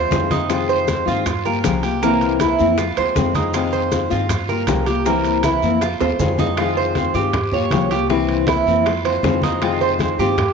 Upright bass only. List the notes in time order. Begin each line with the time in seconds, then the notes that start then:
Already playing: D#2
0.12 F2
1.07 G2
1.65 C2
2.60 F2
2.97 D#2
3.17 F2
4.11 G2
4.68 C2
5.62 F2
6.01 D#2
6.19 F2
7.14 G2
7.71 C2
8.66 F2
9.23 F2
10.18 G2